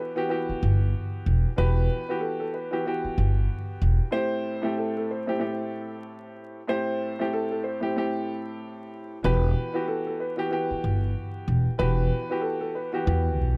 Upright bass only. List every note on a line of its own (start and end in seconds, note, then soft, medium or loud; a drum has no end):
0.49 muted upright bass stroke soft
0.63 0.91 G1 medium
1.26 1.43 E1 medium
1.58 1.87 E1 loud
3.05 muted upright bass stroke soft
3.18 3.47 G1 medium
3.82 3.98 E1 medium
9.24 9.53 E1 loud
10.71 muted upright bass stroke soft
10.84 11.13 G1 medium
11.48 11.65 E1 medium
11.79 12.08 E1 loud
13.07 13.39 E2 loud
13.39 13.57 B1 medium